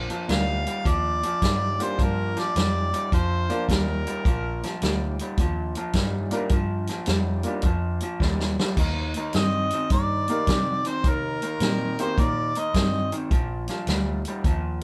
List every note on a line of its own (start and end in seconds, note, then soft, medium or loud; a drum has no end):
0.00 0.25 F3 medium
0.00 0.25 A#3 medium
0.00 0.25 D4 medium
0.00 0.25 F4 medium
0.00 0.25 A#4 medium
0.10 0.27 A#2 medium
0.10 0.27 F3 medium
0.10 closed hi-hat soft
0.28 0.65 D2 medium
0.28 0.63 A#2 medium
0.28 0.63 G3 medium
0.28 0.62 A#3 soft
0.28 0.62 D4 soft
0.28 0.62 F4 soft
0.28 0.62 A#4 medium
0.28 0.90 F5 medium
0.28 snare medium
0.28 closed hi-hat medium
0.67 0.84 A#2 medium
0.67 0.84 G3 medium
0.67 closed hi-hat medium
0.85 1.22 D#2 medium
0.85 1.19 A#2 medium
0.85 1.19 F3 medium
0.85 1.84 D5 loud
0.85 kick medium
0.85 closed hi-hat medium
1.23 1.40 A#2 medium
1.23 1.41 F3 medium
1.23 closed hi-hat medium
1.42 1.78 G2 medium
1.42 1.76 A#2 medium
1.42 1.76 G3 medium
1.42 kick medium
1.42 snare loud
1.42 closed hi-hat medium
1.80 1.97 A#2 medium
1.80 1.97 G3 medium
1.80 2.51 A#3 medium
1.80 2.52 D4 medium
1.80 2.51 F4 medium
1.80 2.52 G4 medium
1.80 2.04 C5 medium
1.80 closed hi-hat medium
1.99 2.35 G2 medium
1.99 2.33 A#2 medium
1.99 2.33 F3 medium
1.99 2.41 A#4 medium
1.99 kick loud
1.99 closed hi-hat medium
2.37 2.54 A#2 medium
2.37 2.54 F3 medium
2.37 3.13 D5 medium
2.37 snare soft
2.37 closed hi-hat medium
2.56 2.92 F2 medium
2.56 2.89 A#2 medium
2.56 2.90 G3 medium
2.56 snare medium
2.56 closed hi-hat medium
2.93 3.10 A#2 medium
2.93 3.10 G3 medium
2.93 closed hi-hat medium
3.12 3.49 F2 medium
3.12 3.46 A#2 medium
3.12 3.46 F3 medium
3.12 3.66 C5 medium
3.12 kick medium
3.12 closed hi-hat medium
3.49 3.67 A#2 medium
3.49 3.67 F3 medium
3.49 3.67 A#3 medium
3.49 3.67 D4 medium
3.49 3.67 F4 medium
3.49 3.67 A#4 medium
3.49 closed hi-hat medium
3.69 4.05 D#2 medium
3.69 4.03 A#2 medium
3.69 4.03 G3 medium
3.69 4.79 A#4 medium
3.69 kick medium
3.69 snare loud
3.69 closed hi-hat medium
4.07 4.24 A#2 medium
4.07 4.24 G3 medium
4.07 closed hi-hat medium
4.25 4.62 A#1 medium
4.25 4.60 A#2 medium
4.25 4.60 F3 medium
4.25 kick loud
4.25 closed hi-hat medium
4.63 4.81 A#2 medium
4.63 4.81 F3 medium
4.63 snare soft
4.63 closed hi-hat medium
4.82 5.19 D2 medium
4.82 5.16 A#2 medium
4.82 5.16 G3 medium
4.82 snare medium
4.82 closed hi-hat medium
5.19 5.37 A#2 medium
5.19 5.38 G3 medium
5.19 closed hi-hat medium
5.38 5.74 D#2 medium
5.38 5.73 A#2 medium
5.38 5.73 F3 medium
5.38 kick medium
5.38 closed hi-hat medium
5.75 5.94 A#2 medium
5.75 5.94 F3 medium
5.75 closed hi-hat medium
5.93 6.31 G2 medium
5.93 6.29 A#2 medium
5.93 6.29 G3 medium
5.93 kick medium
5.93 snare loud
5.93 closed hi-hat medium
6.31 6.50 A#2 medium
6.31 6.51 G3 medium
6.31 6.49 A#3 medium
6.31 6.49 D4 medium
6.31 6.49 F4 medium
6.31 6.49 A#4 medium
6.31 closed hi-hat medium
6.49 6.87 G2 medium
6.49 6.86 A#2 medium
6.49 6.86 F3 medium
6.49 kick loud
6.49 closed hi-hat medium
6.87 7.06 A#2 medium
6.87 7.07 F3 medium
6.87 snare soft
6.87 closed hi-hat medium
7.06 7.44 F2 medium
7.06 7.42 A#2 medium
7.06 7.42 G3 medium
7.06 snare medium
7.06 closed hi-hat medium
7.43 7.63 A#2 medium
7.43 7.64 G3 medium
7.43 7.62 A#3 medium
7.43 7.62 D4 medium
7.43 7.62 F4 medium
7.43 7.62 A#4 medium
7.43 closed hi-hat medium
7.62 8.00 F2 medium
7.62 7.99 A#2 medium
7.62 7.99 F3 medium
7.62 kick medium
7.62 closed hi-hat medium
8.00 8.19 A#2 medium
8.00 8.20 F3 medium
8.00 closed hi-hat medium
8.20 8.57 D#2 medium
8.20 8.55 A#2 medium
8.20 8.55 G3 medium
8.20 kick medium
8.20 snare medium
8.40 snare medium
8.60 8.77 A#2 medium
8.60 8.77 G3 medium
8.60 snare loud
8.77 9.14 D#2 medium
8.77 9.12 D#3 medium
8.77 9.12 A#3 medium
8.77 kick loud
8.77 closed hi-hat medium
8.77 crash medium
9.14 9.33 D#3 medium
9.14 9.34 A#3 medium
9.14 closed hi-hat soft
9.33 9.71 G2 medium
9.33 9.69 D#3 medium
9.33 9.69 C4 medium
9.33 9.88 D#5 loud
9.33 snare medium
9.33 closed hi-hat medium
9.70 9.90 D#3 medium
9.70 9.90 C4 medium
9.70 closed hi-hat medium
9.90 10.27 G2 medium
9.90 10.25 D#3 medium
9.90 10.26 A#3 medium
9.90 10.89 D5 loud
9.90 kick loud
9.90 closed hi-hat medium
10.28 10.46 D#3 medium
10.28 10.46 A#3 medium
10.28 10.47 A#3 medium
10.28 10.46 D#4 medium
10.28 10.46 G4 medium
10.28 10.47 A#4 medium
10.28 closed hi-hat medium
10.47 10.84 C3 medium
10.47 10.82 D#3 medium
10.47 10.82 C4 medium
10.47 kick medium
10.47 snare loud
10.47 closed hi-hat medium
10.85 11.03 D#3 medium
10.85 11.03 C4 medium
10.85 11.10 C5 medium
10.85 closed hi-hat medium
11.04 11.41 C3 medium
11.04 11.39 D#3 medium
11.04 11.39 A#3 medium
11.04 12.00 A#4 medium
11.04 kick loud
11.04 closed hi-hat medium
11.42 11.60 D#3 medium
11.42 11.60 A#3 medium
11.42 closed hi-hat medium
11.60 11.97 A#2 medium
11.60 11.95 D#3 medium
11.60 11.95 C4 medium
11.60 snare loud
11.60 closed hi-hat medium
11.99 12.16 D#3 medium
11.99 12.16 A#3 medium
11.99 12.17 C4 medium
11.99 12.16 D#4 medium
11.99 12.16 G4 medium
11.99 12.16 A#4 medium
11.99 12.21 C5 medium
11.99 closed hi-hat medium
12.18 12.54 A#2 medium
12.18 12.52 D#3 medium
12.18 12.52 A#3 medium
12.18 12.60 D5 medium
12.18 kick loud
12.18 closed hi-hat medium
12.55 12.73 D#3 medium
12.55 12.73 A#3 medium
12.55 13.13 D#5 medium
12.55 closed hi-hat medium
12.74 13.11 G2 medium
12.74 13.08 D#3 medium
12.74 13.09 C4 medium
12.74 kick medium
12.74 snare loud
12.74 closed hi-hat medium
13.12 13.29 D#3 medium
13.12 13.29 C4 medium
13.12 closed hi-hat medium
13.31 13.67 A#1 medium
13.31 13.65 A#2 medium
13.31 13.65 F3 medium
13.31 kick loud
13.31 closed hi-hat medium
13.68 13.86 A#2 medium
13.68 13.86 F3 medium
13.68 snare soft
13.68 closed hi-hat soft
13.87 14.23 D2 medium
13.87 14.22 A#2 medium
13.87 14.22 G3 medium
13.87 snare medium
13.87 closed hi-hat medium
14.25 14.44 A#2 medium
14.25 14.44 G3 medium
14.25 closed hi-hat medium
14.44 14.81 D#2 medium
14.44 14.79 A#2 medium
14.44 14.79 F3 medium
14.44 kick medium
14.44 closed hi-hat medium